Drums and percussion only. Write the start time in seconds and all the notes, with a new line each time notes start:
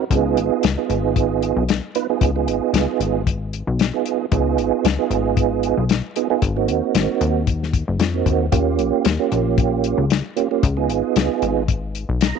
0.11 kick, closed hi-hat
0.37 closed hi-hat
0.63 snare, closed hi-hat
0.90 closed hi-hat
1.16 kick, closed hi-hat
1.42 closed hi-hat
1.69 snare, closed hi-hat
1.95 closed hi-hat
2.21 kick, closed hi-hat
2.48 closed hi-hat
2.74 snare, closed hi-hat
3.00 closed hi-hat
3.27 kick, closed hi-hat
3.53 closed hi-hat
3.79 snare, closed hi-hat
4.06 closed hi-hat
4.32 kick, closed hi-hat
4.58 closed hi-hat
4.85 snare, closed hi-hat
5.11 closed hi-hat
5.37 kick, closed hi-hat
5.63 closed hi-hat
5.89 snare, closed hi-hat
6.16 closed hi-hat
6.42 kick, closed hi-hat
6.68 closed hi-hat
6.95 snare, closed hi-hat
7.21 closed hi-hat
7.47 kick, closed hi-hat
7.63 snare
7.73 kick, closed hi-hat
8.00 snare, closed hi-hat
8.26 kick, closed hi-hat
8.52 kick, closed hi-hat
8.79 closed hi-hat
9.05 snare, closed hi-hat
9.32 closed hi-hat
9.58 kick, closed hi-hat
9.84 closed hi-hat
10.10 snare, closed hi-hat
10.37 closed hi-hat
10.63 kick, closed hi-hat
10.90 closed hi-hat
11.16 snare, closed hi-hat
11.42 closed hi-hat
11.68 kick, closed hi-hat
11.95 closed hi-hat
12.21 snare, closed hi-hat